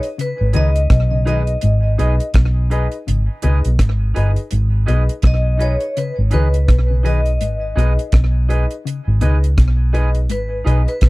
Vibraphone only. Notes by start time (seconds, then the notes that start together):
0.21 B4
0.57 D#5
1.29 D#5
5.27 D#5
5.62 C#5
5.98 B4
6.34 B4
7.06 D#5
10.31 B4
10.89 B4